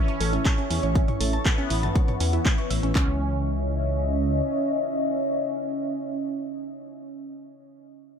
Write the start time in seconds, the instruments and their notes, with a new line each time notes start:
Already playing: ambient pad E3 C#5 E5 C#6, analog polysynth C#4
0.08 synth pluck C#5 C#6, closed hi-hat
0.20 detuned saw bass A1, synth pluck A4 A5, open hi-hat
0.33 synth pluck C#4 C#5, closed hi-hat
0.45 synth pluck A5 A6, kick, clap, closed hi-hat
0.58 synth pluck C#4 C#5, closed hi-hat
0.70 detuned saw bass E2, synth pluck E4 E5, open hi-hat
0.83 detuned saw bass A1, synth pluck C#5 C#6, closed hi-hat
0.95 synth pluck C#4 C#5, kick, closed hi-hat
1.08 synth pluck C#5 C#6, closed hi-hat, mid tom
1.20 detuned saw bass A1, synth pluck A4 A5, open hi-hat
1.33 synth pluck A5 A6, closed hi-hat
1.45 analog polysynth B3, synth pluck A5 A6, kick, clap, closed hi-hat
1.58 synth pluck C#4 C#5, closed hi-hat
1.70 detuned saw bass A1, synth pluck E4 E5, open hi-hat
1.83 synth pluck A5 A6, closed hi-hat, mid tom
1.95 synth pluck C#5 C#6, kick, closed hi-hat
2.08 synth pluck C#5 C#6, closed hi-hat, mid tom
2.20 detuned saw bass E2, synth pluck C#4 C#5, open hi-hat
2.33 synth pluck E4 E5, closed hi-hat
2.45 synth pluck C#4 C#5, kick, clap, closed hi-hat
2.58 synth pluck C#6, closed hi-hat
2.70 detuned saw bass A1, synth pluck E5 E6, open hi-hat
2.83 detuned saw bass A1, synth pluck C#4 C#5, closed hi-hat
2.95 detuned saw bass C#2, ambient pad C#4 C#5 D#5 E5, synth pluck C#4, analog polysynth C#4, kick, clap